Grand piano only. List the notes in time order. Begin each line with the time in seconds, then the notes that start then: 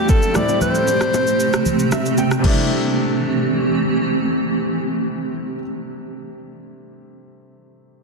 Already playing: G2 A3 C4 D4 F4
0.33 A2 G3 A3 C4
0.38 E4
1.92 E5
2.18 G5
2.39 C3 G3
2.44 A3 D4
2.49 E4